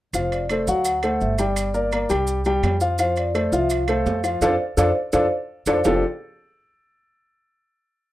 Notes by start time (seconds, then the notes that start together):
0.13 F1 F3 F4 C5 F5, high timbale, maracas
0.32 D5, high timbale, maracas
0.49 A3 A4 C5, high timbale, maracas
0.67 D2 F#3 F#4 F5 F#5, maracas
0.85 F#5, high timbale, maracas
1.03 A3 A4 C5, high timbale, maracas
1.21 G1 E5, maracas
1.38 G3 G4 D5 G5, high timbale, maracas
1.56 high timbale, maracas
1.74 A#3 A#4 D5, maracas
1.92 A#3 A#4 D5, high timbale, maracas
2.10 C2 G3 G4 G5, high timbale, maracas
2.27 maracas
2.45 G3 G4 G5, high timbale, maracas
2.63 F2, high timbale, low timbale, maracas
2.81 F3 F4 F5, maracas
2.98 F3 F4 C5 F5, high timbale, maracas
3.16 D5, high timbale, maracas
3.35 A3 A4 C5, high timbale, maracas
3.52 C2 F3 F4 E5 F5, maracas
3.70 F5, high timbale, maracas
3.88 A3 A4 C5, high timbale, maracas
4.06 F2, low timbale, maracas
4.24 F3 F4 F5, high timbale, maracas
4.41 F2 D4 F4 A4 C5 D5 F5, high timbale, maracas
4.77 F2 D4 F4 A4 C5 D5 F5, high timbale, maracas
5.13 F2 D4 F4 A4 C5 D5 F5, high timbale, maracas
5.66 F2 D4 F4 A4 C5 D5 F5, high timbale, maracas
5.84 F1 F3 C4 D4 F4 G4 A4, low timbale, maracas